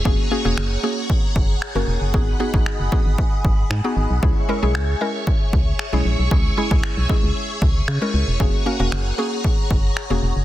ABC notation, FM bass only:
X:1
M:4/4
L:1/16
Q:1/4=115
K:C#dor
V:1 name="FM bass" clef=bass
F,,, z2 E,,, F,,,2 z4 F,,,2 z F,,, E,,, F,,, | G,,,2 z G,,, z F,,, z G,,, z2 G,,,2 G,, z G,,, B,,, | C,, z2 B,,, C,,2 z4 C,,2 z B,,, A,,, B,,, | C,,2 z C,, z B,,, z C,, z2 C,,2 C, z C,, E,,, |
F,,, z2 E,,, F,,,2 z4 F,,,2 z E,,, E,,, F,,, |]